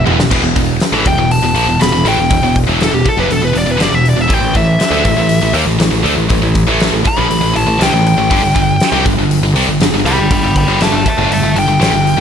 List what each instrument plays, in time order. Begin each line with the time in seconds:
0.05 picked electric bass E1, distorted electric guitar E2 B2 E3, mid tom
0.18 distorted electric guitar E2 B2, snare
0.31 picked electric bass E1, distorted electric guitar E2 B2, kick, crash
0.42 picked electric bass E1, distorted electric guitar E2 B2
0.56 picked electric bass E1, distorted electric guitar E2 B2, kick, open hi-hat
0.80 snare, open hi-hat
0.92 picked electric bass A1, distorted electric guitar A2 E3
1.05 picked electric bass E1, distorted electric guitar E2 B2, lead electric guitar G5, kick, open hi-hat
1.17 picked electric bass E1, distorted electric guitar E2 B2
1.31 lead electric guitar A5, open hi-hat
1.42 picked electric bass E1, distorted electric guitar E2 B2
1.55 picked electric bass A#1, distorted electric guitar A#2 F3, open hi-hat
1.67 picked electric bass E1, distorted electric guitar E2 B2
1.79 picked electric bass E1, distorted electric guitar E2 B2, lead electric guitar B5, snare, open hi-hat
1.92 picked electric bass E1, distorted electric guitar E2 B2
2.04 picked electric bass A1, distorted electric guitar A2 E3, open hi-hat
2.08 lead electric guitar G5
2.17 picked electric bass E1, distorted electric guitar E2 B2
2.30 picked electric bass E1, distorted electric guitar E2 B2, kick, open hi-hat
2.42 picked electric bass E1, distorted electric guitar E2 B2
2.56 kick, open hi-hat
2.67 picked electric bass E1, distorted electric guitar E2 B2 E3
2.81 lead electric guitar A4, snare, open hi-hat
2.92 picked electric bass E1, distorted electric guitar E2 B2, lead electric guitar G4
3.05 lead electric guitar A4, muted distorted electric guitar stroke, kick, open hi-hat
3.17 picked electric bass F1, distorted electric guitar F2 C3, lead electric guitar B4
3.29 picked electric bass E1, distorted electric guitar E2 B2, lead electric guitar A4, open hi-hat
3.42 picked electric bass E1, distorted electric guitar E2 B2, lead electric guitar B4
3.53 picked electric bass E1, distorted electric guitar E2 B2, open hi-hat
3.58 lead electric guitar D5
3.66 picked electric bass E1, distorted electric guitar E2 B2
3.71 lead electric guitar B4
3.77 picked electric bass G1, distorted electric guitar G2 D3, open hi-hat
3.81 lead electric guitar D5, snare
3.91 picked electric bass E1, distorted electric guitar E2 B2, lead electric guitar E5
4.06 lead electric guitar D5, open hi-hat
4.16 picked electric bass E1, distorted electric guitar E2 B2
4.21 lead electric guitar E5
4.28 picked electric bass A1, distorted electric guitar A2 E3, kick, open hi-hat
4.33 lead electric guitar G5
4.41 picked electric bass A1, distorted electric guitar A2 E3
4.54 picked electric bass A1, distorted electric guitar A2 E3, lead electric guitar E5, kick, open hi-hat
4.80 snare, open hi-hat
4.90 picked electric bass D2, distorted electric guitar D3 A3
5.04 picked electric bass A1, distorted electric guitar A2 E3, kick, open hi-hat
5.17 picked electric bass A1, distorted electric guitar A2 E3
5.29 open hi-hat
5.41 picked electric bass A1, distorted electric guitar A2 E3
5.53 picked electric bass D#2, distorted electric guitar D#3 A#3, open hi-hat
5.66 picked electric bass A1, distorted electric guitar A2 E3
5.78 picked electric bass A1, distorted electric guitar A2 E3, snare, open hi-hat
5.91 picked electric bass A1, distorted electric guitar A2 E3
6.03 picked electric bass D2, distorted electric guitar D3 A3, open hi-hat
6.16 picked electric bass A1, distorted electric guitar A2 E3
6.29 picked electric bass A1, distorted electric guitar A2 E3, kick, open hi-hat
6.42 picked electric bass A1, distorted electric guitar A2 E3
6.55 kick, open hi-hat
6.67 picked electric bass A1, distorted electric guitar A2 E3 A3
6.80 snare, open hi-hat
6.92 picked electric bass A1, distorted electric guitar A2 E3
7.05 lead electric guitar B5, muted distorted electric guitar stroke, kick, open hi-hat
7.17 picked electric bass A#1, distorted electric guitar A#2 F3
7.29 picked electric bass A1, distorted electric guitar A2 E3, open hi-hat
7.41 picked electric bass A1, distorted electric guitar A2 E3
7.53 picked electric bass A1, distorted electric guitar A2 E3, lead electric guitar A5, open hi-hat
7.67 picked electric bass A1, distorted electric guitar A2 E3
7.79 picked electric bass C2, distorted electric guitar C3 G3, lead electric guitar G5, snare, open hi-hat
7.92 picked electric bass A1, distorted electric guitar A2 E3
8.07 lead electric guitar G5, open hi-hat
8.17 picked electric bass A1, distorted electric guitar A2 E3
8.30 picked electric bass G1, distorted electric guitar G2 D3, kick, open hi-hat
8.42 picked electric bass G1, distorted electric guitar G2 D3
8.55 picked electric bass G1, distorted electric guitar G2 D3, kick, open hi-hat
8.80 snare, open hi-hat
8.92 picked electric bass C2, distorted electric guitar C3 G3
9.05 picked electric bass G1, distorted electric guitar G2 D3, kick, open hi-hat
9.17 picked electric bass G1, distorted electric guitar G2 D3
9.31 open hi-hat
9.42 picked electric bass G1, distorted electric guitar G2 D3
9.54 picked electric bass C2, distorted electric guitar C3 G3, open hi-hat
9.67 picked electric bass G1, distorted electric guitar G2 D3
9.80 picked electric bass G1, distorted electric guitar G2 D3, snare, open hi-hat
9.92 picked electric bass G1, distorted electric guitar G2 D3
10.05 picked electric bass C2, distorted electric guitar C3 G3, lead electric guitar G5 B5, open hi-hat
10.18 picked electric bass G1, distorted electric guitar G2 D3
10.30 picked electric bass G1, distorted electric guitar G2 D3, lead electric guitar G5 B5, kick, open hi-hat
10.42 picked electric bass G1, distorted electric guitar G2 D3
10.56 lead electric guitar G5 B5, kick, open hi-hat
10.67 picked electric bass G1, distorted electric guitar G2 D3 G3
10.81 lead electric guitar E5 A5, snare, open hi-hat
10.92 picked electric bass G1, distorted electric guitar G2 D3
11.06 lead electric guitar E5 A5, muted distorted electric guitar stroke, kick, open hi-hat
11.17 picked electric bass G1, distorted electric guitar G2 D3
11.30 picked electric bass G1, distorted electric guitar G2 D3, lead electric guitar E5 A5, open hi-hat
11.42 picked electric bass G1, distorted electric guitar G2 D3
11.55 picked electric bass G1, distorted electric guitar G2 D3, lead electric guitar G5, open hi-hat
11.68 picked electric bass G1, distorted electric guitar G2 D3
11.80 picked electric bass A1, distorted electric guitar A2 E3, snare, open hi-hat
11.92 picked electric bass G1, distorted electric guitar G2 D3
12.07 open hi-hat
12.17 picked electric bass G1, distorted electric guitar G2